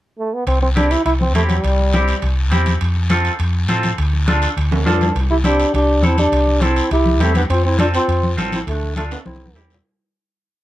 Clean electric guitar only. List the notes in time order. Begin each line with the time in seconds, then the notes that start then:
0.76 C4 E4 G4
1.35 C4 E4 G4
1.94 C4 E4 G4
2.51 C4 E4 G4
3.10 C4 F4 A4
3.69 C4 F4 A4
4.28 D4 F4 A4
4.86 D4 F4 A4 A5
5.44 C4 E4 G4
6.03 C4 E4 A4
6.62 C4 E4 A4
7.20 C4 E4 G4
7.79 C4 F4 A4
8.37 C4 F4 A4
8.97 D4 F4 A4
9.55 C4 E4 G4